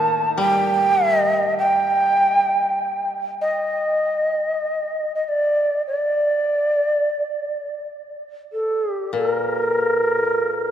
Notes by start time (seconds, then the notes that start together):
Already playing: A2 D#3 A3 A#3 D#4 A5
0.38 G3 G5
1.16 D#5
1.59 G5
3.41 D#5
5.15 D#5
5.24 D#5
5.29 D5
5.87 D5
8.53 A4
8.91 G4
9.13 A#2
9.18 A#4